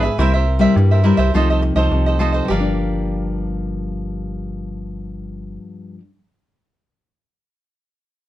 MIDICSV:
0, 0, Header, 1, 5, 480
1, 0, Start_track
1, 0, Key_signature, -2, "minor"
1, 0, Tempo, 581395
1, 144, Time_signature, 4, 2, 24, 8
1, 6843, End_track
2, 0, Start_track
2, 0, Title_t, "Cavaquinho"
2, 0, Program_c, 0, 24
2, 20, Note_on_c, 0, 76, 49
2, 31, Note_on_c, 0, 71, 40
2, 41, Note_on_c, 0, 68, 40
2, 133, Note_off_c, 0, 76, 0
2, 138, Note_off_c, 0, 71, 0
2, 143, Note_off_c, 0, 68, 0
2, 156, Note_on_c, 0, 64, 63
2, 165, Note_on_c, 0, 70, 64
2, 168, Note_on_c, 0, 72, 69
2, 176, Note_on_c, 0, 76, 73
2, 260, Note_off_c, 0, 64, 0
2, 265, Note_off_c, 0, 70, 0
2, 266, Note_off_c, 0, 76, 0
2, 267, Note_off_c, 0, 72, 0
2, 276, Note_on_c, 0, 76, 49
2, 286, Note_on_c, 0, 72, 39
2, 293, Note_on_c, 0, 70, 33
2, 494, Note_off_c, 0, 76, 0
2, 502, Note_off_c, 0, 72, 0
2, 503, Note_on_c, 0, 76, 66
2, 509, Note_off_c, 0, 70, 0
2, 512, Note_on_c, 0, 72, 58
2, 520, Note_on_c, 0, 70, 54
2, 614, Note_off_c, 0, 76, 0
2, 618, Note_off_c, 0, 72, 0
2, 623, Note_off_c, 0, 70, 0
2, 753, Note_on_c, 0, 76, 39
2, 759, Note_on_c, 0, 72, 40
2, 768, Note_on_c, 0, 70, 30
2, 855, Note_off_c, 0, 70, 0
2, 856, Note_on_c, 0, 64, 49
2, 859, Note_off_c, 0, 72, 0
2, 859, Note_off_c, 0, 76, 0
2, 865, Note_on_c, 0, 70, 45
2, 869, Note_on_c, 0, 72, 54
2, 874, Note_on_c, 0, 76, 47
2, 958, Note_off_c, 0, 76, 0
2, 968, Note_on_c, 0, 76, 62
2, 969, Note_off_c, 0, 72, 0
2, 971, Note_off_c, 0, 64, 0
2, 973, Note_off_c, 0, 70, 0
2, 979, Note_on_c, 0, 72, 53
2, 983, Note_on_c, 0, 70, 50
2, 1086, Note_off_c, 0, 76, 0
2, 1092, Note_off_c, 0, 72, 0
2, 1094, Note_off_c, 0, 70, 0
2, 1111, Note_on_c, 0, 65, 59
2, 1117, Note_on_c, 0, 69, 63
2, 1119, Note_on_c, 0, 72, 60
2, 1128, Note_on_c, 0, 75, 60
2, 1218, Note_off_c, 0, 65, 0
2, 1221, Note_off_c, 0, 69, 0
2, 1222, Note_off_c, 0, 72, 0
2, 1226, Note_off_c, 0, 75, 0
2, 1237, Note_on_c, 0, 75, 40
2, 1244, Note_on_c, 0, 72, 40
2, 1254, Note_on_c, 0, 69, 38
2, 1330, Note_off_c, 0, 69, 0
2, 1336, Note_off_c, 0, 72, 0
2, 1336, Note_off_c, 0, 75, 0
2, 1452, Note_on_c, 0, 75, 51
2, 1461, Note_on_c, 0, 72, 51
2, 1472, Note_on_c, 0, 69, 45
2, 1688, Note_off_c, 0, 75, 0
2, 1693, Note_off_c, 0, 72, 0
2, 1699, Note_off_c, 0, 69, 0
2, 1705, Note_on_c, 0, 75, 46
2, 1715, Note_on_c, 0, 72, 41
2, 1723, Note_on_c, 0, 69, 34
2, 1807, Note_off_c, 0, 69, 0
2, 1810, Note_on_c, 0, 65, 56
2, 1814, Note_off_c, 0, 72, 0
2, 1815, Note_off_c, 0, 75, 0
2, 1817, Note_on_c, 0, 69, 62
2, 1824, Note_on_c, 0, 72, 67
2, 1828, Note_on_c, 0, 75, 65
2, 1909, Note_off_c, 0, 75, 0
2, 1919, Note_on_c, 0, 75, 42
2, 1923, Note_off_c, 0, 72, 0
2, 1927, Note_off_c, 0, 65, 0
2, 1928, Note_off_c, 0, 69, 0
2, 1933, Note_on_c, 0, 72, 45
2, 1938, Note_on_c, 0, 69, 37
2, 2042, Note_off_c, 0, 75, 0
2, 2049, Note_off_c, 0, 72, 0
2, 2049, Note_on_c, 0, 67, 57
2, 2052, Note_off_c, 0, 69, 0
2, 2064, Note_on_c, 0, 70, 59
2, 2069, Note_on_c, 0, 74, 60
2, 2080, Note_on_c, 0, 77, 66
2, 4939, Note_off_c, 0, 67, 0
2, 4954, Note_off_c, 0, 70, 0
2, 4958, Note_off_c, 0, 74, 0
2, 4970, Note_off_c, 0, 77, 0
2, 6843, End_track
3, 0, Start_track
3, 0, Title_t, "Nylon-string guitar"
3, 0, Program_c, 1, 24
3, 0, Note_on_c, 1, 44, 53
3, 121, Note_off_c, 1, 44, 0
3, 148, Note_on_c, 1, 55, 43
3, 152, Note_on_c, 1, 58, 44
3, 153, Note_on_c, 1, 48, 50
3, 156, Note_on_c, 1, 64, 53
3, 372, Note_off_c, 1, 55, 0
3, 372, Note_off_c, 1, 58, 0
3, 375, Note_off_c, 1, 64, 0
3, 488, Note_on_c, 1, 55, 68
3, 493, Note_on_c, 1, 58, 59
3, 500, Note_on_c, 1, 64, 64
3, 604, Note_off_c, 1, 48, 0
3, 625, Note_on_c, 1, 43, 53
3, 818, Note_off_c, 1, 55, 0
3, 819, Note_off_c, 1, 58, 0
3, 824, Note_off_c, 1, 64, 0
3, 856, Note_on_c, 1, 55, 58
3, 859, Note_on_c, 1, 58, 52
3, 867, Note_on_c, 1, 64, 55
3, 1062, Note_off_c, 1, 55, 0
3, 1063, Note_off_c, 1, 58, 0
3, 1067, Note_off_c, 1, 64, 0
3, 1081, Note_off_c, 1, 43, 0
3, 1103, Note_on_c, 1, 48, 54
3, 1105, Note_on_c, 1, 53, 56
3, 1112, Note_on_c, 1, 57, 51
3, 1115, Note_on_c, 1, 63, 66
3, 1425, Note_off_c, 1, 53, 0
3, 1430, Note_off_c, 1, 57, 0
3, 1430, Note_off_c, 1, 63, 0
3, 1450, Note_on_c, 1, 53, 55
3, 1454, Note_on_c, 1, 57, 50
3, 1456, Note_on_c, 1, 63, 55
3, 1560, Note_off_c, 1, 48, 0
3, 1583, Note_on_c, 1, 48, 49
3, 1779, Note_off_c, 1, 53, 0
3, 1779, Note_off_c, 1, 57, 0
3, 1782, Note_off_c, 1, 63, 0
3, 1812, Note_on_c, 1, 53, 54
3, 1817, Note_on_c, 1, 57, 49
3, 1822, Note_on_c, 1, 63, 54
3, 2020, Note_off_c, 1, 53, 0
3, 2020, Note_on_c, 1, 43, 52
3, 2022, Note_off_c, 1, 57, 0
3, 2025, Note_off_c, 1, 63, 0
3, 2039, Note_off_c, 1, 48, 0
3, 2068, Note_on_c, 1, 53, 58
3, 2107, Note_on_c, 1, 58, 55
3, 2145, Note_on_c, 1, 62, 55
3, 4910, Note_off_c, 1, 43, 0
3, 4958, Note_off_c, 1, 53, 0
3, 4997, Note_off_c, 1, 58, 0
3, 5035, Note_off_c, 1, 62, 0
3, 6843, End_track
4, 0, Start_track
4, 0, Title_t, "FM bass"
4, 0, Program_c, 2, 39
4, 154, Note_on_c, 2, 36, 91
4, 558, Note_off_c, 2, 36, 0
4, 630, Note_on_c, 2, 43, 86
4, 933, Note_off_c, 2, 43, 0
4, 976, Note_on_c, 2, 36, 80
4, 1082, Note_off_c, 2, 36, 0
4, 1113, Note_on_c, 2, 36, 81
4, 1415, Note_off_c, 2, 36, 0
4, 1453, Note_on_c, 2, 36, 80
4, 1560, Note_off_c, 2, 36, 0
4, 1583, Note_on_c, 2, 36, 77
4, 1991, Note_off_c, 2, 36, 0
4, 2065, Note_on_c, 2, 31, 93
4, 4611, Note_off_c, 2, 31, 0
4, 6843, End_track
5, 0, Start_track
5, 0, Title_t, "Muted cavaquinho strokes"
5, 639, Note_on_c, 9, 29, 32
5, 721, Note_off_c, 9, 29, 0
5, 1339, Note_on_c, 9, 29, 30
5, 1421, Note_off_c, 9, 29, 0
5, 6843, End_track
0, 0, End_of_file